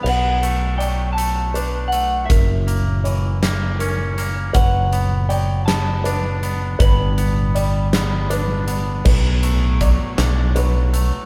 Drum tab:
CC |x-----|------|------|------|
HH |-xxxxx|xxxxxx|xxxxxx|xxxxxx|
SD |------|---o--|---o--|---o--|
BD |------|o-----|o-----|o-----|

CC |x-----|
HH |-xxxxx|
SD |---o--|
BD |o-o---|